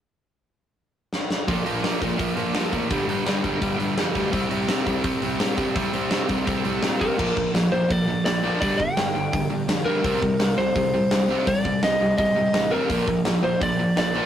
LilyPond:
<<
  \new Staff \with { instrumentName = "Lead electric guitar" } { \time 4/4 \key bes \major \tempo 4 = 168 r1 | r1 | r1 | r1 |
r2. r8 bes'8~ | bes'4 r8 c''8 d''4 d''4 | d''8 g''2. bes'8~ | bes'4. c''2~ c''8 |
d''4 ees''4 ees''4. bes'8~ | bes'4 r8 c''8 d''4 d''4 | }
  \new Staff \with { instrumentName = "Overdriven electric guitar" } { \clef bass \time 4/4 \key bes \major r1 | <bes, f bes>8 <bes, f bes>8 <bes, f bes>8 <bes, f bes>8 <bes, f bes>8 <bes, f bes>8 <bes, f bes>8 <bes, f bes>8 | <g, d g>8 <g, d g>8 <g, d g>8 <g, d g>8 <g, d g>8 <g, d g>8 <g, d g>8 <g, d g>8 | <c g c'>8 <c g c'>8 <c g c'>8 <c g c'>8 <c g c'>8 <c g c'>8 <c g c'>8 <c g c'>8 |
<c g c'>8 <c g c'>8 <c g c'>8 <c g c'>8 <c g c'>8 <c g c'>8 <c g c'>8 <c g c'>8 | <bes, f bes>8 <bes, f>8 <bes, f>8 <bes, f>8 <bes, f>8 <bes, f>8 <bes, f>8 <bes, f bes>8 | <g, d g>8 <g, d>8 <g, d>8 <g, d>8 <g, d>8 <g, d>8 <g, d>8 <g, d g>8 | <c g c'>8 <c g>8 <c g>8 <c g>8 <c g>8 <c g>8 <c g>8 <c g c'>8 |
<c g>8 <c g>8 <c g>8 <c g>8 <c g>8 <c g>8 <c g>8 <c g c'>8 | <bes, f bes>8 <bes, f>8 <bes, f>8 <bes, f>8 <bes, f>8 <bes, f>8 <bes, f>8 <bes, f bes>8 | }
  \new Staff \with { instrumentName = "Overdriven electric guitar" } { \clef bass \time 4/4 \key bes \major r1 | <bes, f bes>8 <bes, f bes>8 <bes, f bes>8 <bes, f bes>8 <bes, f bes>8 <bes, f bes>8 <bes, f bes>8 <bes, f bes>8 | <g, d g>8 <g, d g>8 <g, d g>8 <g, d g>8 <g, d g>8 <g, d g>8 <g, d g>8 <g, d g>8 | <c g c'>8 <c g c'>8 <c g c'>8 <c g c'>8 <c g c'>8 <c g c'>8 <c g c'>8 <c g c'>8 |
<c g c'>8 <c g c'>8 <c g c'>8 <c g c'>8 <c g c'>8 <c g c'>8 <c g c'>8 <c g c'>8 | <bes, f bes>8 <bes, f>8 <bes, f>8 <bes, f>8 <bes, f>8 <bes, f>8 <bes, f>8 <bes, f bes>8 | <g, d g>8 <g, d>8 <g, d>8 <g, d>8 <g, d>8 <g, d>8 <g, d>8 <g, d g>8 | <c g c'>8 <c g>8 <c g>8 <c g>8 <c g>8 <c g>8 <c g>8 <c g c'>8 |
<c g>8 <c g>8 <c g>8 <c g>8 <c g>8 <c g>8 <c g>8 <c g c'>8 | <bes, f bes>8 <bes, f>8 <bes, f>8 <bes, f>8 <bes, f>8 <bes, f>8 <bes, f>8 <bes, f bes>8 | }
  \new Staff \with { instrumentName = "Picked electric bass" } { \clef bass \time 4/4 \key bes \major r1 | bes,,8 bes,,8 bes,8 bes,,8 bes,,8 bes,,8 g,8 a,,8 | g,,8 g,,8 g,8 g,,8 g,,8 g,,8 f,8 d,8 | c,8 c,8 c8 c,8 c,8 c,8 bes,8 g,8 |
c,8 c,8 c8 c,8 c,8 c,8 bes,8 g,8 | bes,,8 bes,,8 bes,,8 bes,,8 bes,,4 bes,,4 | g,,4 g,,8 g,,8 g,,8 g,8 f,4 | c,8 c,8 c,8 c,8 c,4 c,4 |
c,4 c,8 c,8 c,8 c8 a,,4 | bes,,8 bes,,8 bes,,8 bes,,8 bes,,4 bes,,4 | }
  \new DrumStaff \with { instrumentName = "Drums" } \drummode { \time 4/4 r4 r4 r4 sn8 sn8 | <hho bd>8 hho8 <hho sn>8 <hho bd>8 <hho bd>8 hho8 <hho sn>8 <hho bd>8 | <hho bd>8 hho8 <hho sn>8 <hho bd>8 <hho bd>8 hho8 <hho sn>8 <hho bd>8 | <hho bd>8 hho8 <hho sn>8 <hho bd>8 <hho bd>8 hho8 <hho sn>8 <hho bd>8 |
<hho bd>8 hho8 <hho sn>8 <hho bd>8 <hho bd>8 hho8 <hho sn>8 <hho bd>8 | <cymc bd>8 bd8 <hho sn>4 <hho bd>4 <hho sn>4 | <hho bd>8 bd8 <hho sn>4 <hho bd>4 <hho sn>4 | <hho bd>8 bd8 <hho sn>4 <hho bd>4 <hho sn>4 |
<hho bd>8 bd8 <hho sn>4 <hho bd>4 <hho sn>4 | <hho bd>8 bd8 <hho sn>4 <hho bd>4 <hho sn>4 | }
>>